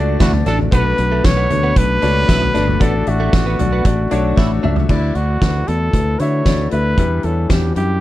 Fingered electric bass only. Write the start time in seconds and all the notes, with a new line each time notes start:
Already playing: C#2
0.20 D2
0.46 A1
0.72 B1
0.99 B1
1.25 B1
1.51 D2
1.76 B1
2.03 C#2
2.29 B1
2.55 G1
2.81 A1
3.07 A1
3.33 A1
3.60 B1
3.85 A1
4.12 B1
4.37 A1
4.64 C#2
4.89 D2
5.15 D2
5.42 D2
5.68 E2
5.93 D2
6.20 D3
6.46 D2
6.72 D2
6.97 E2
7.24 E2
7.50 E2
7.76 F#2